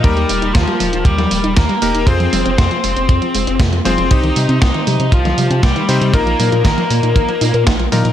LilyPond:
<<
  \new Staff \with { instrumentName = "Electric grand piano" } { \time 4/4 \key ees \major \tempo 4 = 118 <bes ees' g' bes'>2.~ <bes ees' g' bes'>8 <bes ees' g' bes'>8 | <c' f' aes' c''>2.~ <c' f' aes' c''>8 <c' f' aes' c''>8 | <c' ees' g' c''>2.~ <c' ees' g' c''>8 <c' ees' g' c''>8 | <bes ees' f' bes'>2.~ <bes ees' f' bes'>8 <bes ees' f' bes'>8 | }
  \new Staff \with { instrumentName = "Lead electric guitar" } { \time 4/4 \key ees \major <g g'>4 <f f'>4 <g g'>4 <bes bes'>4 | <c' c''>4 <c' c''>2 r8 <c' c''>8 | <ees' ees''>4 <ees' ees''>4 <f f'>4 <g g'>4 | <bes bes'>4 <bes bes'>2 r4 | }
  \new Staff \with { instrumentName = "Synth arpeggio sound" } { \clef bass \time 4/4 \key ees \major ees16 g16 bes16 ees'16 ees16 g16 bes16 ees'16 ees16 g16 bes16 ees'16 ees16 g16 bes16 ees'16 | c16 f16 aes16 c'16 c16 f16 aes16 c'16 c16 f16 aes16 c'16 c16 f16 aes16 c'16 | c16 ees16 g16 c'16 c16 ees16 g16 c'16 c16 ees16 g16 c'16 c16 ees16 g16 c'16 | ees16 f16 bes16 ees'16 ees16 f16 bes16 ees'16 ees16 f16 ees'16 bes'16 ees'16 f16 ees16 f16 | }
  \new Staff \with { instrumentName = "Analog synth bass" } { \clef bass \time 4/4 \key ees \major ees,8 ees,,16 ees,,16 ees,16 r16 ees,,16 ees,,16 ees,8 ees,,16 ees,,16 ees,16 r16 ees,,16 ees,,16 | f,8 f,,16 f,,16 f,16 r16 f,,16 f,,16 f,16 r16 f,,16 f,,16 f,8 f,,16 f,,16 | c,8 c16 c16 c,16 r16 c16 c16 c,8 c16 c16 c,16 r16 c16 c16 | bes,,8 bes,16 bes,16 bes,,16 r16 bes,16 bes,16 bes,,16 r16 bes,16 bes,16 bes,,8 bes,16 bes,16 | }
  \new DrumStaff \with { instrumentName = "Drums" } \drummode { \time 4/4 <hh bd>16 hh16 hho16 hh16 <hh bd sn>16 hh16 <hho tommh>16 hh16 <hh bd>16 <hh sn tommh>16 hho16 hh16 <hh bd sn>16 hh16 hho16 hh16 | <hh bd>16 hh16 <hho tommh>16 hh16 <hh bd sn>16 hh16 hho16 hh16 <hh bd>16 hh16 hho16 hh16 <hh bd sn>16 hh16 <hho tommh>16 hh16 | <hh bd>16 hh16 hho16 hh16 <hh bd sn>16 hh16 <hho tommh>16 hh16 <hh bd>16 <hh sn tommh>16 hho16 hh16 <hh bd sn>16 hh16 hho16 hh16 | <hh bd>16 hh16 <hho tommh>16 hh16 <hh bd sn>16 hh16 hho16 hh16 <hh bd>16 hh16 hho16 hh16 <hh bd sn>16 hh16 <hho tommh>16 hh16 | }
>>